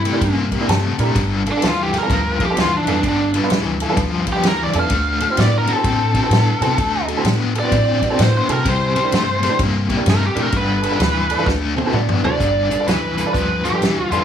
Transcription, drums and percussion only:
0.05 ride
0.21 kick, ride
0.52 kick, ride
0.69 snare, ride
0.99 ride
1.16 kick, ride
1.46 ride
1.62 snare, ride
1.94 snare, ride
2.10 kick, ride
2.40 kick, ride
2.57 snare, ride
2.87 ride
3.03 kick, ride
3.34 ride
3.50 snare, ride
3.80 ride
3.97 kick, ride
4.27 kick, ride
4.43 snare, ride
4.73 ride
4.90 kick, ride
5.20 ride
5.37 snare, ride
5.67 ride
5.84 kick, ride
6.14 kick, ride
6.31 snare, ride
6.62 ride
6.78 kick, ride
7.08 ride
7.25 snare, ride
7.55 ride
7.72 kick, ride
8.02 kick, ride
8.19 snare, ride
8.49 ride
8.65 kick, ride
8.96 ride
9.12 snare, ride
9.43 snare, ride
9.59 kick, ride
9.89 kick, ride
10.06 snare, ride
10.36 ride
10.52 kick, ride
10.83 ride
11.00 snare, ride
11.30 ride
11.46 kick, snare
11.78 high tom
11.93 mid tom
12.09 mid tom
12.25 floor tom
12.40 kick, closed hi-hat
12.71 closed hi-hat
12.87 snare, closed hi-hat
13.18 closed hi-hat
13.34 kick, closed hi-hat
13.65 closed hi-hat
13.82 snare, closed hi-hat
14.12 closed hi-hat

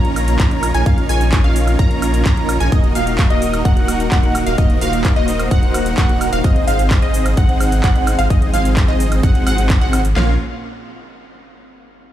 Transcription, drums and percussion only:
0.05 closed hi-hat
0.16 open hi-hat, high woodblock, shaker
0.28 closed hi-hat, shaker
0.39 kick, clap, closed hi-hat, shaker
0.51 closed hi-hat
0.63 open hi-hat, high woodblock, shaker
0.74 closed hi-hat, shaker
0.86 kick, closed hi-hat, shaker
0.98 closed hi-hat
1.09 open hi-hat, shaker
1.21 closed hi-hat, shaker
1.32 kick, clap, closed hi-hat, shaker
1.44 closed hi-hat
1.56 open hi-hat, shaker
1.67 closed hi-hat, high woodblock, shaker
1.79 kick, closed hi-hat, shaker
1.91 closed hi-hat
2.02 open hi-hat, high woodblock, shaker
2.14 closed hi-hat, shaker
2.25 kick, clap, closed hi-hat, shaker
2.37 closed hi-hat
2.49 open hi-hat, high woodblock, shaker
2.60 closed hi-hat, shaker
2.72 kick, closed hi-hat, shaker
2.84 closed hi-hat
2.95 open hi-hat, shaker
3.07 closed hi-hat, shaker
3.18 kick, clap, closed hi-hat, shaker
3.30 closed hi-hat
3.42 open hi-hat, shaker
3.54 closed hi-hat, high woodblock, shaker
3.65 kick, closed hi-hat, shaker
3.77 closed hi-hat
3.88 open hi-hat, high woodblock, shaker
4.00 closed hi-hat, shaker
4.12 kick, clap, closed hi-hat, shaker
4.23 closed hi-hat
4.35 open hi-hat, high woodblock, shaker
4.47 closed hi-hat, shaker
4.58 kick, closed hi-hat, shaker
4.70 closed hi-hat
4.81 open hi-hat, shaker
4.93 closed hi-hat, shaker
5.04 kick, clap, closed hi-hat, shaker
5.16 closed hi-hat
5.28 open hi-hat, shaker
5.39 closed hi-hat, high woodblock, shaker
5.51 kick, closed hi-hat, shaker
5.63 closed hi-hat
5.74 open hi-hat, high woodblock, shaker
5.86 closed hi-hat, shaker
5.98 kick, clap, closed hi-hat, shaker
6.09 closed hi-hat
6.21 open hi-hat, high woodblock, shaker
6.33 closed hi-hat, shaker
6.44 kick, closed hi-hat, shaker
6.56 closed hi-hat
6.68 open hi-hat, shaker
6.79 closed hi-hat, shaker
6.91 kick, clap, closed hi-hat, shaker
7.02 closed hi-hat
7.14 open hi-hat, shaker
7.26 closed hi-hat, high woodblock, shaker
7.37 kick, closed hi-hat, shaker
7.49 closed hi-hat
7.60 open hi-hat, high woodblock, shaker
7.72 closed hi-hat, shaker
7.84 kick, clap, closed hi-hat, shaker
7.95 closed hi-hat
8.07 open hi-hat, high woodblock, shaker
8.19 closed hi-hat, shaker
8.30 kick, closed hi-hat, shaker
8.42 closed hi-hat
8.54 open hi-hat, shaker
8.65 closed hi-hat, shaker
8.77 kick, clap, closed hi-hat, shaker
8.88 clap, closed hi-hat
9.00 open hi-hat, shaker
9.12 closed hi-hat, high woodblock, shaker
9.23 kick, closed hi-hat, shaker
9.35 closed hi-hat
9.47 open hi-hat, high woodblock, shaker
9.58 closed hi-hat, shaker
9.70 kick, clap, closed hi-hat, shaker
9.82 closed hi-hat
9.93 open hi-hat, high woodblock, shaker
10.05 closed hi-hat, shaker
10.16 snare, clap

